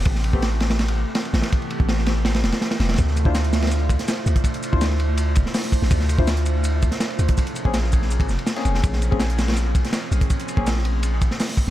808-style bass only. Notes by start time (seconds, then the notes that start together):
0.06 A1
0.33 A1
1.33 A1
1.80 A1
2.43 E1
2.80 E1
2.99 D2
3.25 D2
4.26 D2
4.73 D2
5.37 D1
5.82 A1
5.91 D2
6.19 D2
7.19 D2
7.65 A#1
8.29 F1
8.65 F1
8.84 A#1
9.12 A#1
10.12 A#1
10.57 A#1
11.22 A1